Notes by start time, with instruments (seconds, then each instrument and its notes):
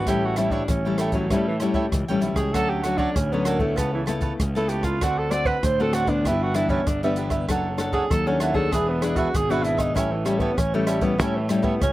0.07 fingered electric bass A1, nylon-string guitar A2 G3 C#4 E4, cavaquinho E4 A4 C#5 G5, tenor saxophone G4, kick, cross-stick, closed hi-hat
0.25 tenor saxophone F#4
0.36 nylon-string guitar G3 C#4 E4, cavaquinho E4 A4 C#5 G5, tenor saxophone E4, cross-stick, closed hi-hat
0.50 tenor saxophone D4, cavaquinho E4 A4 C#5 G5, kick
0.68 fingered electric bass A1, nylon-string guitar E3, tenor saxophone C#4, kick, cross-stick, closed hi-hat
0.85 nylon-string guitar G3 C#4 E4, cavaquinho A4 C#5 G5
0.98 tenor saxophone A3, cavaquinho E4 A4 C#5 G5, cross-stick, closed hi-hat
1.12 tenor saxophone F#3, nylon-string guitar G3 C#4 E4, cavaquinho A4 C#5 G5, kick, closed hi-hat
1.30 fingered electric bass A2, nylon-string guitar A2 G3 C#4 E4, tenor saxophone G3, cavaquinho E4 A4 C#5 G5, kick, cross-stick, closed hi-hat
1.47 tenor saxophone E3
1.60 nylon-string guitar G3 C#4 E4, cavaquinho E4 A4 C#5 G5, cross-stick, closed hi-hat
1.74 cavaquinho E4 A4 C#5 G5, kick
1.92 fingered electric bass C#2, nylon-string guitar E3, kick, cross-stick, closed hi-hat
2.08 fingered electric bass A1, nylon-string guitar G3 C#4 E4, cavaquinho A4 C#5 G5, closed hi-hat
2.21 fingered electric bass B1, cavaquinho E4 A4 C#5 G5, closed hi-hat
2.33 fingered electric bass C#2, tenor saxophone G#4, cavaquinho G5, kick, cross-stick, closed hi-hat
2.38 cavaquinho A4 C#5
2.53 fingered electric bass D2, nylon-string guitar D3 F#3 A3 C#4, cavaquinho F#4 A4 C#5 D5, tenor saxophone A4, kick, cross-stick, closed hi-hat
2.69 tenor saxophone G4
2.83 nylon-string guitar F#3 A3 C#4, tenor saxophone F#4, cavaquinho F#4 A4 C#5 D5, cross-stick, closed hi-hat
2.97 tenor saxophone D4, cavaquinho F#4 A4 C#5 D5, kick
3.16 fingered electric bass D2, nylon-string guitar A2, tenor saxophone C#4, kick, cross-stick, closed hi-hat
3.32 nylon-string guitar F#3 A3 C#4, tenor saxophone B3, cavaquinho A4 C#5 D5
3.45 tenor saxophone A#3, cavaquinho F#4 A4 C#5 D5, cross-stick, closed hi-hat
3.59 nylon-string guitar A3 B3 E4, tenor saxophone A3, cavaquinho A4 C#5 D5, kick
3.76 fingered electric bass C#2, nylon-string guitar C#3, tenor saxophone B3, cavaquinho A4 B4 C#5 A5, kick, cross-stick, closed hi-hat
3.94 tenor saxophone E3
4.06 nylon-string guitar A3 B3 E4, cavaquinho A4 B4 C#5 A5, cross-stick, closed hi-hat
4.21 cavaquinho A4 B4 C#5 A5, kick, closed hi-hat
4.40 fingered electric bass C#2, nylon-string guitar C#3, kick, cross-stick, closed hi-hat
4.55 nylon-string guitar A3 B3 E4, tenor saxophone A4, cavaquinho B4 C#5 A5, closed hi-hat
4.68 tenor saxophone G4, cavaquinho A4 B4 C#5 A5, closed hi-hat
4.83 tenor saxophone F4, cavaquinho B4 C#5 A5, kick, cross-stick
5.01 fingered electric bass D2, nylon-string guitar D3 A3 C4 F#4, cavaquinho D4 C5 D5 F#5, tenor saxophone F#4, kick, cross-stick, closed hi-hat
5.18 tenor saxophone A4
5.31 nylon-string guitar A3 C4 F#4, cavaquinho D4 C5 D5 F#5, tenor saxophone D5, cross-stick, closed hi-hat
5.45 cavaquinho D4 C5 D5 F#5, tenor saxophone B4, kick
5.63 fingered electric bass D2, nylon-string guitar A2, tenor saxophone C5, kick, cross-stick, closed hi-hat
5.80 nylon-string guitar A3 C4 F#4, tenor saxophone A4, cavaquinho C5 D5 F#5
5.93 cavaquinho D4 C5 D5 F#5, tenor saxophone F#4, cross-stick, closed hi-hat
6.07 nylon-string guitar E3 B3 D4, tenor saxophone D4, cavaquinho C5 D5 F#5, kick, closed hi-hat
6.24 fingered electric bass G1, nylon-string guitar G2, cavaquinho D4 G4 B4 E5, tenor saxophone E4, kick, cross-stick, closed hi-hat
6.43 tenor saxophone F#4
6.54 nylon-string guitar E3 B3 D4, cavaquinho D4 G4 B4 E5, tenor saxophone E4, cross-stick, closed hi-hat
6.69 tenor saxophone C#4, cavaquinho D4 G4 B4 E5, kick
6.87 fingered electric bass G1, nylon-string guitar D3, tenor saxophone D4, kick, cross-stick, closed hi-hat
7.03 nylon-string guitar E3 B3 D4, tenor saxophone G3, cavaquinho G4 B4 E5, closed hi-hat
7.16 cavaquinho D4 G4 B4 E5, closed hi-hat
7.30 cavaquinho G4 B4 E5, kick, cross-stick, closed hi-hat
7.48 fingered electric bass F#1, nylon-string guitar F#3 C#4 D4 A4, cavaquinho D4 A4 C#5 F#5, kick, cross-stick, closed hi-hat
7.77 nylon-string guitar C#4 D4 A4, cavaquinho D4 A4 C#5 F#5, cross-stick, closed hi-hat
7.92 cavaquinho D4 A4 C#5 F#5, tenor saxophone G#4, kick
8.10 fingered electric bass D#2, nylon-string guitar F#3, tenor saxophone A4, kick, cross-stick, closed hi-hat
8.27 nylon-string guitar C#4 D4 A4, tenor saxophone C#4, cavaquinho A4 C#5 F#5
8.40 cavaquinho D4 A4 C#5 F#5, tenor saxophone E4, cross-stick, closed hi-hat
8.54 nylon-string guitar B3 D4 G#4, tenor saxophone A4, cavaquinho A4 C#5 F#5, kick
8.71 fingered electric bass E1, nylon-string guitar E3, cavaquinho D4 G#4 B4 E5, tenor saxophone G#4, kick, cross-stick, closed hi-hat
8.89 tenor saxophone B3
9.02 nylon-string guitar B3 D4 G#4, cavaquinho D4 G#4 B4 E5, tenor saxophone D4, cross-stick, closed hi-hat
9.16 cavaquinho D4 G#4 B4 E5, tenor saxophone F#4, kick, closed hi-hat
9.34 fingered electric bass G#1, nylon-string guitar B2, tenor saxophone G#4, kick, cross-stick, closed hi-hat
9.50 nylon-string guitar B3 D4 G#4, tenor saxophone F#4, cavaquinho G#4 B4 E5, closed hi-hat
9.63 cavaquinho D4 G#4 B4 E5, tenor saxophone E4, closed hi-hat
9.77 tenor saxophone D#4, cavaquinho G#4 B4 E5, kick, cross-stick
9.95 fingered electric bass A1, nylon-string guitar A2 G3 C#4 E4, tenor saxophone C#4, cavaquinho E4 A4 C#5 G5, kick, cross-stick, closed hi-hat
10.11 tenor saxophone E3
10.25 tenor saxophone G3, nylon-string guitar G3 C#4 E4, cavaquinho E4 A4 C#5 G5, cross-stick, closed hi-hat
10.39 tenor saxophone B3, cavaquinho E4 A4 C#5 G5, kick
10.57 fingered electric bass A1, nylon-string guitar E3, tenor saxophone C#4, kick, cross-stick, closed hi-hat
10.74 nylon-string guitar G3 C#4 E4, tenor saxophone A3, cavaquinho A4 C#5 G5
10.87 tenor saxophone G3, cavaquinho E4 A4 C#5 G5, cross-stick, closed hi-hat
11.01 nylon-string guitar G3 C#4 E4, tenor saxophone B3, cavaquinho A4 C#5 G5, kick, closed hi-hat
11.18 fingered electric bass A2, nylon-string guitar A2 G3 C#4 E4, tenor saxophone C#4, cavaquinho E4 A4 C#5 G5, kick, cross-stick, closed hi-hat
11.36 tenor saxophone E3
11.48 tenor saxophone G3, nylon-string guitar G3 C#4 E4, cavaquinho E4 A4 C#5 G5, cross-stick, closed hi-hat
11.62 tenor saxophone B3, cavaquinho E4 A4 C#5 G5, kick
11.81 fingered electric bass C#2, nylon-string guitar E3, tenor saxophone C#4, kick, cross-stick, closed hi-hat